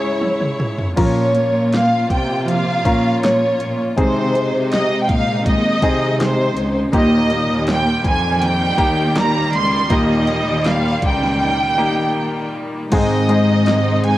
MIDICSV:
0, 0, Header, 1, 8, 480
1, 0, Start_track
1, 0, Key_signature, -4, "major"
1, 0, Tempo, 752823
1, 619, Time_signature, 4, 2, 24, 8
1, 2535, Tempo, 741656
1, 6855, Tempo, 753769
1, 9101, End_track
2, 0, Start_track
2, 0, Title_t, "Violin section"
2, 0, Program_c, 0, 48
2, 0, Note_on_c, 0, 73, 74
2, 384, Note_off_c, 0, 73, 0
2, 628, Note_on_c, 0, 73, 70
2, 1078, Note_off_c, 0, 73, 0
2, 1110, Note_on_c, 0, 77, 79
2, 1345, Note_off_c, 0, 77, 0
2, 1346, Note_on_c, 0, 79, 72
2, 1566, Note_off_c, 0, 79, 0
2, 1586, Note_on_c, 0, 77, 80
2, 2035, Note_off_c, 0, 77, 0
2, 2062, Note_on_c, 0, 73, 76
2, 2417, Note_off_c, 0, 73, 0
2, 2546, Note_on_c, 0, 72, 88
2, 2995, Note_off_c, 0, 72, 0
2, 3026, Note_on_c, 0, 75, 83
2, 3213, Note_on_c, 0, 79, 61
2, 3215, Note_off_c, 0, 75, 0
2, 3256, Note_off_c, 0, 79, 0
2, 3262, Note_on_c, 0, 77, 87
2, 3497, Note_off_c, 0, 77, 0
2, 3508, Note_on_c, 0, 75, 87
2, 3952, Note_off_c, 0, 75, 0
2, 3988, Note_on_c, 0, 72, 84
2, 4339, Note_off_c, 0, 72, 0
2, 4466, Note_on_c, 0, 75, 95
2, 4910, Note_off_c, 0, 75, 0
2, 4945, Note_on_c, 0, 79, 92
2, 5160, Note_off_c, 0, 79, 0
2, 5183, Note_on_c, 0, 80, 95
2, 5415, Note_off_c, 0, 80, 0
2, 5428, Note_on_c, 0, 79, 100
2, 5899, Note_off_c, 0, 79, 0
2, 5908, Note_on_c, 0, 82, 100
2, 6124, Note_off_c, 0, 82, 0
2, 6146, Note_on_c, 0, 84, 109
2, 6379, Note_off_c, 0, 84, 0
2, 6382, Note_on_c, 0, 75, 99
2, 6859, Note_off_c, 0, 75, 0
2, 6869, Note_on_c, 0, 77, 99
2, 7100, Note_off_c, 0, 77, 0
2, 7106, Note_on_c, 0, 79, 95
2, 8039, Note_off_c, 0, 79, 0
2, 8303, Note_on_c, 0, 75, 83
2, 8991, Note_off_c, 0, 75, 0
2, 9025, Note_on_c, 0, 80, 90
2, 9101, Note_off_c, 0, 80, 0
2, 9101, End_track
3, 0, Start_track
3, 0, Title_t, "Grand piano"
3, 0, Program_c, 1, 0
3, 0, Control_c, 1, 64, 127
3, 0, Note_on_c, 1, 37, 54
3, 0, Note_on_c, 1, 44, 58
3, 0, Note_on_c, 1, 61, 57
3, 0, Note_on_c, 1, 64, 52
3, 0, Note_on_c, 1, 68, 66
3, 579, Note_off_c, 1, 61, 0
3, 581, Note_off_c, 1, 64, 0
3, 583, Note_off_c, 1, 68, 0
3, 593, Note_off_c, 1, 37, 0
3, 593, Note_off_c, 1, 44, 0
3, 615, Note_on_c, 1, 61, 63
3, 617, Note_on_c, 1, 65, 54
3, 618, Note_on_c, 1, 46, 53
3, 618, Note_on_c, 1, 53, 55
3, 619, Note_on_c, 1, 70, 67
3, 629, Control_c, 1, 64, 0
3, 756, Control_c, 1, 64, 127
3, 1313, Note_off_c, 1, 46, 0
3, 1314, Note_off_c, 1, 53, 0
3, 1529, Note_off_c, 1, 61, 0
3, 1530, Note_off_c, 1, 65, 0
3, 1531, Note_off_c, 1, 70, 0
3, 1817, Note_on_c, 1, 61, 65
3, 1819, Note_on_c, 1, 65, 57
3, 1824, Note_on_c, 1, 70, 72
3, 2497, Note_off_c, 1, 61, 0
3, 2498, Note_off_c, 1, 65, 0
3, 2501, Note_off_c, 1, 70, 0
3, 2530, Note_on_c, 1, 60, 62
3, 2532, Note_on_c, 1, 48, 56
3, 2534, Note_on_c, 1, 63, 56
3, 2535, Note_on_c, 1, 68, 74
3, 2544, Control_c, 1, 64, 0
3, 2670, Control_c, 1, 64, 127
3, 3228, Note_off_c, 1, 48, 0
3, 3444, Note_off_c, 1, 60, 0
3, 3446, Note_off_c, 1, 63, 0
3, 3446, Note_off_c, 1, 68, 0
3, 3732, Note_on_c, 1, 60, 75
3, 3734, Note_on_c, 1, 63, 63
3, 3736, Note_on_c, 1, 68, 82
3, 4413, Note_off_c, 1, 60, 0
3, 4415, Note_off_c, 1, 63, 0
3, 4416, Note_off_c, 1, 68, 0
3, 4445, Note_on_c, 1, 58, 69
3, 4449, Note_on_c, 1, 63, 64
3, 4450, Note_on_c, 1, 46, 61
3, 4452, Note_on_c, 1, 67, 81
3, 4457, Control_c, 1, 64, 0
3, 4552, Control_c, 1, 64, 127
3, 5142, Note_off_c, 1, 46, 0
3, 5358, Note_off_c, 1, 58, 0
3, 5359, Note_off_c, 1, 63, 0
3, 5361, Note_off_c, 1, 67, 0
3, 5642, Note_on_c, 1, 58, 77
3, 5644, Note_on_c, 1, 63, 67
3, 5647, Note_on_c, 1, 67, 86
3, 6332, Note_off_c, 1, 58, 0
3, 6333, Note_off_c, 1, 63, 0
3, 6335, Note_off_c, 1, 67, 0
3, 6368, Note_on_c, 1, 58, 72
3, 6372, Note_on_c, 1, 46, 62
3, 6374, Note_on_c, 1, 63, 67
3, 6375, Note_on_c, 1, 67, 76
3, 7068, Note_off_c, 1, 46, 0
3, 7282, Note_off_c, 1, 58, 0
3, 7286, Note_off_c, 1, 63, 0
3, 7286, Note_off_c, 1, 67, 0
3, 7573, Note_on_c, 1, 58, 74
3, 7575, Note_on_c, 1, 63, 69
3, 7579, Note_on_c, 1, 67, 82
3, 8263, Note_off_c, 1, 58, 0
3, 8264, Note_off_c, 1, 63, 0
3, 8266, Note_off_c, 1, 67, 0
3, 8300, Note_on_c, 1, 56, 72
3, 8304, Note_on_c, 1, 44, 59
3, 8304, Note_on_c, 1, 51, 63
3, 8304, Note_on_c, 1, 60, 68
3, 8305, Note_on_c, 1, 68, 75
3, 8306, Control_c, 1, 64, 0
3, 8306, Note_on_c, 1, 63, 62
3, 8430, Control_c, 1, 64, 127
3, 8525, Note_off_c, 1, 56, 0
3, 8526, Note_off_c, 1, 60, 0
3, 8528, Note_off_c, 1, 63, 0
3, 8529, Note_off_c, 1, 68, 0
3, 8534, Note_on_c, 1, 56, 62
3, 8535, Note_on_c, 1, 60, 58
3, 8537, Note_on_c, 1, 63, 61
3, 8539, Note_on_c, 1, 68, 72
3, 8991, Note_off_c, 1, 44, 0
3, 8991, Note_off_c, 1, 51, 0
3, 9101, Note_off_c, 1, 56, 0
3, 9101, Note_off_c, 1, 60, 0
3, 9101, Note_off_c, 1, 63, 0
3, 9101, Note_off_c, 1, 68, 0
3, 9101, End_track
4, 0, Start_track
4, 0, Title_t, "French horn section"
4, 0, Program_c, 2, 60
4, 8297, Note_on_c, 2, 60, 94
4, 9101, Note_off_c, 2, 60, 0
4, 9101, End_track
5, 0, Start_track
5, 0, Title_t, "Nylon-string guitar"
5, 0, Program_c, 3, 24
5, 613, Note_on_c, 3, 46, 62
5, 616, Note_on_c, 3, 53, 63
5, 621, Note_on_c, 3, 58, 70
5, 623, Note_on_c, 3, 61, 73
5, 627, Note_on_c, 3, 65, 67
5, 842, Note_off_c, 3, 65, 0
5, 849, Note_on_c, 3, 65, 41
5, 856, Note_off_c, 3, 46, 0
5, 857, Note_off_c, 3, 53, 0
5, 860, Note_off_c, 3, 58, 0
5, 861, Note_off_c, 3, 61, 0
5, 872, Note_on_c, 3, 58, 37
5, 1563, Note_on_c, 3, 53, 54
5, 1573, Note_off_c, 3, 58, 0
5, 1574, Note_off_c, 3, 65, 0
5, 1580, Note_on_c, 3, 58, 52
5, 1612, Note_on_c, 3, 65, 63
5, 2525, Note_off_c, 3, 53, 0
5, 2530, Note_on_c, 3, 48, 72
5, 2534, Note_off_c, 3, 58, 0
5, 2534, Note_on_c, 3, 51, 68
5, 2539, Note_on_c, 3, 56, 77
5, 2542, Note_off_c, 3, 65, 0
5, 2542, Note_on_c, 3, 60, 76
5, 2544, Note_on_c, 3, 68, 79
5, 2757, Note_off_c, 3, 68, 0
5, 2765, Note_on_c, 3, 68, 46
5, 2769, Note_off_c, 3, 60, 0
5, 2773, Note_off_c, 3, 48, 0
5, 2775, Note_off_c, 3, 51, 0
5, 2777, Note_off_c, 3, 56, 0
5, 2777, Note_on_c, 3, 60, 48
5, 2787, Note_on_c, 3, 56, 37
5, 3474, Note_on_c, 3, 51, 56
5, 3487, Note_off_c, 3, 56, 0
5, 3488, Note_off_c, 3, 68, 0
5, 3494, Note_off_c, 3, 60, 0
5, 3494, Note_on_c, 3, 56, 58
5, 3509, Note_on_c, 3, 60, 59
5, 3524, Note_on_c, 3, 68, 60
5, 4439, Note_off_c, 3, 51, 0
5, 4442, Note_on_c, 3, 51, 77
5, 4444, Note_off_c, 3, 56, 0
5, 4447, Note_on_c, 3, 58, 79
5, 4450, Note_off_c, 3, 60, 0
5, 4453, Note_on_c, 3, 63, 81
5, 4455, Note_off_c, 3, 68, 0
5, 4457, Note_on_c, 3, 67, 84
5, 4684, Note_off_c, 3, 51, 0
5, 4686, Note_off_c, 3, 63, 0
5, 4687, Note_off_c, 3, 58, 0
5, 4692, Note_off_c, 3, 67, 0
5, 4694, Note_on_c, 3, 63, 45
5, 4703, Note_on_c, 3, 58, 43
5, 5390, Note_on_c, 3, 51, 58
5, 5399, Note_off_c, 3, 58, 0
5, 5407, Note_on_c, 3, 58, 68
5, 5422, Note_off_c, 3, 63, 0
5, 5425, Note_on_c, 3, 63, 64
5, 5437, Note_on_c, 3, 67, 66
5, 6363, Note_off_c, 3, 51, 0
5, 6363, Note_off_c, 3, 58, 0
5, 6365, Note_on_c, 3, 51, 73
5, 6371, Note_on_c, 3, 58, 81
5, 6372, Note_off_c, 3, 63, 0
5, 6372, Note_off_c, 3, 67, 0
5, 6375, Note_on_c, 3, 63, 77
5, 6379, Note_on_c, 3, 67, 88
5, 6598, Note_off_c, 3, 67, 0
5, 6605, Note_on_c, 3, 67, 52
5, 6609, Note_off_c, 3, 51, 0
5, 6611, Note_off_c, 3, 63, 0
5, 6612, Note_off_c, 3, 58, 0
5, 6619, Note_on_c, 3, 63, 50
5, 6627, Note_on_c, 3, 58, 43
5, 7321, Note_on_c, 3, 51, 57
5, 7329, Note_off_c, 3, 67, 0
5, 7331, Note_off_c, 3, 58, 0
5, 7338, Note_on_c, 3, 58, 59
5, 7351, Note_off_c, 3, 63, 0
5, 7354, Note_on_c, 3, 63, 69
5, 7369, Note_on_c, 3, 67, 62
5, 8289, Note_on_c, 3, 44, 78
5, 8295, Note_off_c, 3, 51, 0
5, 8295, Note_on_c, 3, 51, 75
5, 8302, Note_off_c, 3, 58, 0
5, 8303, Note_on_c, 3, 56, 87
5, 8308, Note_on_c, 3, 60, 80
5, 8312, Note_off_c, 3, 63, 0
5, 8315, Note_on_c, 3, 63, 88
5, 8317, Note_off_c, 3, 67, 0
5, 8321, Note_on_c, 3, 68, 83
5, 9101, Note_off_c, 3, 44, 0
5, 9101, Note_off_c, 3, 51, 0
5, 9101, Note_off_c, 3, 56, 0
5, 9101, Note_off_c, 3, 60, 0
5, 9101, Note_off_c, 3, 63, 0
5, 9101, Note_off_c, 3, 68, 0
5, 9101, End_track
6, 0, Start_track
6, 0, Title_t, "String section"
6, 0, Program_c, 4, 48
6, 0, Note_on_c, 4, 56, 62
6, 0, Note_on_c, 4, 64, 66
6, 0, Note_on_c, 4, 73, 78
6, 602, Note_off_c, 4, 73, 0
6, 603, Note_off_c, 4, 56, 0
6, 603, Note_off_c, 4, 64, 0
6, 619, Note_on_c, 4, 58, 59
6, 621, Note_on_c, 4, 46, 65
6, 621, Note_on_c, 4, 65, 71
6, 2514, Note_off_c, 4, 58, 0
6, 2515, Note_off_c, 4, 46, 0
6, 2515, Note_off_c, 4, 65, 0
6, 2533, Note_on_c, 4, 48, 68
6, 2534, Note_on_c, 4, 63, 75
6, 2536, Note_on_c, 4, 56, 66
6, 4430, Note_off_c, 4, 48, 0
6, 4430, Note_off_c, 4, 63, 0
6, 4431, Note_off_c, 4, 56, 0
6, 4441, Note_on_c, 4, 58, 69
6, 4442, Note_on_c, 4, 55, 85
6, 4443, Note_on_c, 4, 51, 76
6, 8269, Note_off_c, 4, 58, 0
6, 8270, Note_off_c, 4, 51, 0
6, 8270, Note_off_c, 4, 55, 0
6, 8298, Note_on_c, 4, 48, 77
6, 8298, Note_on_c, 4, 63, 84
6, 8299, Note_on_c, 4, 56, 69
6, 9101, Note_off_c, 4, 48, 0
6, 9101, Note_off_c, 4, 56, 0
6, 9101, Note_off_c, 4, 63, 0
6, 9101, End_track
7, 0, Start_track
7, 0, Title_t, "Cello section"
7, 0, Program_c, 5, 48
7, 623, Note_on_c, 5, 46, 86
7, 956, Note_off_c, 5, 46, 0
7, 978, Note_on_c, 5, 46, 88
7, 1314, Note_off_c, 5, 46, 0
7, 1340, Note_on_c, 5, 48, 82
7, 1793, Note_off_c, 5, 48, 0
7, 1818, Note_on_c, 5, 46, 76
7, 2040, Note_off_c, 5, 46, 0
7, 2060, Note_on_c, 5, 46, 79
7, 2280, Note_off_c, 5, 46, 0
7, 2303, Note_on_c, 5, 46, 77
7, 2521, Note_off_c, 5, 46, 0
7, 2537, Note_on_c, 5, 48, 91
7, 2872, Note_off_c, 5, 48, 0
7, 2901, Note_on_c, 5, 48, 88
7, 3233, Note_off_c, 5, 48, 0
7, 3256, Note_on_c, 5, 46, 81
7, 3705, Note_off_c, 5, 46, 0
7, 3730, Note_on_c, 5, 48, 88
7, 4184, Note_off_c, 5, 48, 0
7, 4211, Note_on_c, 5, 37, 97
7, 4432, Note_off_c, 5, 37, 0
7, 4451, Note_on_c, 5, 39, 108
7, 4784, Note_off_c, 5, 39, 0
7, 4809, Note_on_c, 5, 39, 107
7, 5143, Note_off_c, 5, 39, 0
7, 5169, Note_on_c, 5, 41, 92
7, 5622, Note_off_c, 5, 41, 0
7, 5644, Note_on_c, 5, 39, 92
7, 5870, Note_off_c, 5, 39, 0
7, 5894, Note_on_c, 5, 39, 89
7, 6116, Note_off_c, 5, 39, 0
7, 6133, Note_on_c, 5, 37, 94
7, 6356, Note_off_c, 5, 37, 0
7, 6373, Note_on_c, 5, 39, 105
7, 6709, Note_off_c, 5, 39, 0
7, 6734, Note_on_c, 5, 39, 99
7, 7068, Note_off_c, 5, 39, 0
7, 7091, Note_on_c, 5, 37, 94
7, 7314, Note_off_c, 5, 37, 0
7, 8300, Note_on_c, 5, 44, 110
7, 9101, Note_off_c, 5, 44, 0
7, 9101, End_track
8, 0, Start_track
8, 0, Title_t, "Drums"
8, 136, Note_on_c, 9, 48, 48
8, 200, Note_off_c, 9, 48, 0
8, 258, Note_on_c, 9, 47, 52
8, 322, Note_off_c, 9, 47, 0
8, 380, Note_on_c, 9, 45, 78
8, 443, Note_off_c, 9, 45, 0
8, 499, Note_on_c, 9, 43, 73
8, 562, Note_off_c, 9, 43, 0
8, 619, Note_on_c, 9, 42, 82
8, 619, Note_on_c, 9, 49, 80
8, 620, Note_on_c, 9, 36, 95
8, 683, Note_off_c, 9, 42, 0
8, 683, Note_off_c, 9, 49, 0
8, 684, Note_off_c, 9, 36, 0
8, 858, Note_on_c, 9, 42, 60
8, 922, Note_off_c, 9, 42, 0
8, 1100, Note_on_c, 9, 42, 58
8, 1111, Note_on_c, 9, 38, 83
8, 1164, Note_off_c, 9, 42, 0
8, 1175, Note_off_c, 9, 38, 0
8, 1340, Note_on_c, 9, 36, 67
8, 1343, Note_on_c, 9, 42, 59
8, 1404, Note_off_c, 9, 36, 0
8, 1406, Note_off_c, 9, 42, 0
8, 1583, Note_on_c, 9, 42, 72
8, 1647, Note_off_c, 9, 42, 0
8, 1819, Note_on_c, 9, 36, 80
8, 1820, Note_on_c, 9, 42, 69
8, 1882, Note_off_c, 9, 36, 0
8, 1884, Note_off_c, 9, 42, 0
8, 2062, Note_on_c, 9, 42, 82
8, 2069, Note_on_c, 9, 38, 103
8, 2126, Note_off_c, 9, 42, 0
8, 2133, Note_off_c, 9, 38, 0
8, 2297, Note_on_c, 9, 42, 64
8, 2360, Note_off_c, 9, 42, 0
8, 2536, Note_on_c, 9, 36, 97
8, 2537, Note_on_c, 9, 42, 83
8, 2601, Note_off_c, 9, 36, 0
8, 2601, Note_off_c, 9, 42, 0
8, 2779, Note_on_c, 9, 42, 57
8, 2844, Note_off_c, 9, 42, 0
8, 3015, Note_on_c, 9, 42, 65
8, 3025, Note_on_c, 9, 38, 86
8, 3079, Note_off_c, 9, 42, 0
8, 3090, Note_off_c, 9, 38, 0
8, 3255, Note_on_c, 9, 42, 65
8, 3256, Note_on_c, 9, 36, 75
8, 3320, Note_off_c, 9, 36, 0
8, 3320, Note_off_c, 9, 42, 0
8, 3495, Note_on_c, 9, 36, 96
8, 3495, Note_on_c, 9, 42, 78
8, 3559, Note_off_c, 9, 36, 0
8, 3559, Note_off_c, 9, 42, 0
8, 3730, Note_on_c, 9, 36, 86
8, 3730, Note_on_c, 9, 42, 73
8, 3795, Note_off_c, 9, 36, 0
8, 3795, Note_off_c, 9, 42, 0
8, 3975, Note_on_c, 9, 42, 86
8, 3981, Note_on_c, 9, 38, 102
8, 4040, Note_off_c, 9, 42, 0
8, 4046, Note_off_c, 9, 38, 0
8, 4212, Note_on_c, 9, 42, 70
8, 4277, Note_off_c, 9, 42, 0
8, 4448, Note_on_c, 9, 42, 91
8, 4449, Note_on_c, 9, 36, 106
8, 4513, Note_off_c, 9, 42, 0
8, 4514, Note_off_c, 9, 36, 0
8, 4687, Note_on_c, 9, 42, 63
8, 4751, Note_off_c, 9, 42, 0
8, 4925, Note_on_c, 9, 42, 61
8, 4936, Note_on_c, 9, 38, 94
8, 4989, Note_off_c, 9, 42, 0
8, 5000, Note_off_c, 9, 38, 0
8, 5168, Note_on_c, 9, 36, 75
8, 5171, Note_on_c, 9, 42, 66
8, 5233, Note_off_c, 9, 36, 0
8, 5235, Note_off_c, 9, 42, 0
8, 5410, Note_on_c, 9, 42, 84
8, 5474, Note_off_c, 9, 42, 0
8, 5645, Note_on_c, 9, 36, 86
8, 5646, Note_on_c, 9, 42, 69
8, 5710, Note_off_c, 9, 36, 0
8, 5711, Note_off_c, 9, 42, 0
8, 5887, Note_on_c, 9, 42, 85
8, 5893, Note_on_c, 9, 38, 113
8, 5952, Note_off_c, 9, 42, 0
8, 5958, Note_off_c, 9, 38, 0
8, 6129, Note_on_c, 9, 42, 69
8, 6194, Note_off_c, 9, 42, 0
8, 6368, Note_on_c, 9, 42, 86
8, 6370, Note_on_c, 9, 36, 105
8, 6433, Note_off_c, 9, 42, 0
8, 6435, Note_off_c, 9, 36, 0
8, 6609, Note_on_c, 9, 42, 67
8, 6674, Note_off_c, 9, 42, 0
8, 6850, Note_on_c, 9, 42, 69
8, 6861, Note_on_c, 9, 38, 90
8, 6914, Note_off_c, 9, 42, 0
8, 6925, Note_off_c, 9, 38, 0
8, 7091, Note_on_c, 9, 42, 68
8, 7092, Note_on_c, 9, 36, 80
8, 7154, Note_off_c, 9, 42, 0
8, 7156, Note_off_c, 9, 36, 0
8, 7225, Note_on_c, 9, 38, 35
8, 7289, Note_off_c, 9, 38, 0
8, 8298, Note_on_c, 9, 42, 96
8, 8298, Note_on_c, 9, 49, 94
8, 8300, Note_on_c, 9, 36, 111
8, 8361, Note_off_c, 9, 49, 0
8, 8362, Note_off_c, 9, 42, 0
8, 8363, Note_off_c, 9, 36, 0
8, 8536, Note_on_c, 9, 42, 67
8, 8600, Note_off_c, 9, 42, 0
8, 8773, Note_on_c, 9, 42, 74
8, 8783, Note_on_c, 9, 38, 92
8, 8836, Note_off_c, 9, 42, 0
8, 8847, Note_off_c, 9, 38, 0
8, 9012, Note_on_c, 9, 42, 67
8, 9076, Note_off_c, 9, 42, 0
8, 9101, End_track
0, 0, End_of_file